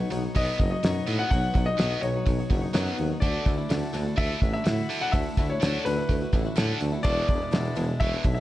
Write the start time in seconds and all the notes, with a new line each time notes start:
Already playing: F#4 C#5
0.10 B1 B2 F#3 B3 D#4 F#4 C#5, open hi-hat
0.21 D#4 F#4 C#5
0.35 B1 B2 F#3 B3 D#5, kick, open hi-hat
0.47 D#4 F#4 C#5
0.58 F#1 B2 F#3 B3 D#4 F#4 C#5, kick, open hi-hat
0.71 D#4 F#4 C#5 D#5
0.83 F#2 B2 F#3 B3 D#4 F#4 C#5, snare, open hi-hat
1.07 A2 B2 F#3 B3, open hi-hat
1.19 D#4 F#4 C#5 F#5
1.30 B1 B2 F#3 B3 D#4 F#4 C#5 F#5, kick, open hi-hat
1.54 B1 B2 F#3 B3 D#4 F#4 C#5, kick, open hi-hat
1.66 D#4 F#4 C#5 D#5
1.77 B1 B2 F#3 B3 D#4 F#4 C#5, snare, open hi-hat
2.01 B1 B2 F#3 B3 D#4 F#4 C#5, open hi-hat
2.14 D#4 F#4 C#5
2.25 B1 B2 F#3, kick, open hi-hat
2.39 D#4 F#4 C#5
2.50 F#1 B2 F#3 B3 D#4 F#4 C#5, kick, open hi-hat
2.61 D#4 F#4 C#5
2.73 F#2 B2 F#3 B3 D#4 F#4 C#5, snare, open hi-hat
2.98 D#2 B2 F#3, open hi-hat
3.10 D#4 F#4 C#5
3.20 D2 D3 A3 D4 E4 F#4 D5, kick, open hi-hat
3.45 D2 D3 A3 D4 E4 F#4, kick, open hi-hat
3.57 D4 E4 F#4
3.69 D2 D3 A3 D4 E4 F#4, snare, open hi-hat
3.93 D2 D3 A3 D4 E4 F#4, open hi-hat
4.05 D4 E4 F#4
4.16 D2 D3 A3 D4 E5, kick, open hi-hat
4.30 D4 E4 F#4
4.40 A1 D3 A3 D4 F#4, kick, open hi-hat
4.45 E4
4.53 D4 E4 F#4 E5
4.64 A2 D3 A3 D4 E4 F#4, snare, open hi-hat
4.89 D3 A3 D4, open hi-hat
5.01 D4 E4 F#4 F#5
5.12 D2 D3 A3 D4 E4 F#4 E5, kick, open hi-hat
5.37 D2 D3 A3 D4 E4 F#4, kick, open hi-hat
5.49 D4 E4 F#4 C#5
5.60 D2 D3 A3 D4 E4 F#4, snare, open hi-hat
5.84 D2 D3 A3 D4 E4 F#4 B4, open hi-hat
5.97 D4 E4 F#4
6.09 D2 D3 A3, kick, open hi-hat
6.21 D4 E4 F#4
6.32 A1 D3 A3 D4 E4 F#4, kick, open hi-hat
6.45 D4 E4 F#4
6.56 A2 D3 A3 D4 E4 F#4, snare, open hi-hat
6.81 D2 D3 A3, open hi-hat
6.92 D4 E4 F#4
7.03 E1 E2 B2 E3 G#3 B3 D4 E4 D5, kick, open hi-hat
7.27 E1 E2 B2 G#3 B3 D4 E4, kick, open hi-hat
7.40 G#3 B3 D4 E4
7.51 E1 E2 B2 E3 G#3 B3 D4 E4, snare, open hi-hat
7.75 E1 E2 B2 G#3 B3 D4 E4, open hi-hat
7.86 G#3 B3 D4 E4
8.00 E1 E2 B2 E3 E5, kick, open hi-hat
8.12 G#3 B3 D4 E4
8.23 B1 E2 B2 G#3 B3 D4 E4, kick, open hi-hat
8.35 E4 E5